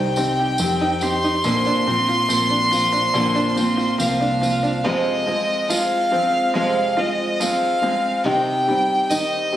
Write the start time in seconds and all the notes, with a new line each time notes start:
Already playing: C2 C3 D#3 G3 C4 D#4 G4 G5
0.16 C4 D#4 G4, tambourine
0.39 G4
0.58 F2 D#3 C4 D#4, tambourine
0.62 G4
0.79 D#4, tambourine
1.01 C4 D#4 G4 C6, tambourine
1.23 D#4, tambourine
1.44 A#1 A#2 D3 F3 A#3 C4 F4, tambourine
1.65 D4, tambourine
1.87 A#2 F3 A#3 C4 F4
2.08 F4, tambourine
2.29 A#1 F3 A#3 C4 F4, tambourine
2.50 D4
2.71 F3 A#3 C4 F4, tambourine
2.92 D4, tambourine
3.14 A#1 A#2 D3 F3 A#3 C4 F4, tambourine
3.35 D4, tambourine
3.56 F3 A#3 C4 F4, tambourine
3.77 F4, tambourine
3.99 C2 F3 A#3 C4 F4 F5, tambourine
4.21 D4, tambourine
4.41 F3 A#3 C4 F4, tambourine
4.63 D4, tambourine
4.84 F2 C3 F3 G#3 C4 F4 D#5
5.26 F3 G#3 C4 F4
5.68 F3 G#3 C4 F4 F5, tambourine
6.11 F3 G#3 C4 F4
6.54 F2 C3 F3 G#3 C4 F4 F5
6.97 F3 G#3 C4 F4 D#5
7.40 F3 G#3 C4 F4 F5, tambourine
7.82 F3 G#3 C4 F4
8.24 C3 D#3 C4 D#4 G4 G5
8.68 G3 C4 D#4 G4
9.10 D#3 C4 D#4 G4 D#5, tambourine
9.52 C4 G4